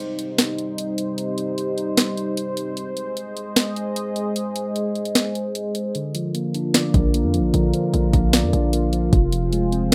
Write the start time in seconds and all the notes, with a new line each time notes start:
Already playing: C3 G3 D#4 C5 D5
0.19 closed hi-hat
0.38 snare, closed hi-hat
0.58 closed hi-hat
0.78 closed hi-hat
0.98 closed hi-hat
1.18 closed hi-hat
1.38 closed hi-hat
1.58 closed hi-hat
1.78 closed hi-hat
1.97 snare, closed hi-hat
2.17 closed hi-hat
2.37 closed hi-hat
2.57 closed hi-hat
2.77 G#3 G#4 D#5, closed hi-hat
2.97 closed hi-hat
3.17 closed hi-hat
3.37 closed hi-hat
3.56 snare, closed hi-hat
3.76 closed hi-hat
3.96 closed hi-hat
4.16 closed hi-hat
4.36 closed hi-hat
4.56 closed hi-hat
4.76 closed hi-hat
4.95 closed hi-hat
5.05 closed hi-hat
5.15 snare, closed hi-hat
5.35 closed hi-hat
5.55 closed hi-hat
5.75 closed hi-hat
5.95 D3 D4 F4 A#4, closed hi-hat
6.15 F3, closed hi-hat
6.35 A#3, closed hi-hat
6.54 D4, closed hi-hat
6.74 D5, snare, closed hi-hat
6.94 A#1 D4, kick, closed hi-hat
7.14 A#3, closed hi-hat
7.24 F2
7.34 F3, closed hi-hat
7.39 A#1
7.54 A#1 D3, closed hi-hat
7.74 F3, closed hi-hat
7.93 A#1 A#3, closed hi-hat
8.13 A#1 D4, kick, closed hi-hat
8.33 D5, snare, closed hi-hat
8.43 F2
8.53 A#1 D4, closed hi-hat
8.73 A#3, closed hi-hat
8.93 F3, closed hi-hat
9.13 F1 C3 F3 G#4 C5, kick, closed hi-hat
9.32 F3, closed hi-hat
9.53 G#3, closed hi-hat
9.72 C4, closed hi-hat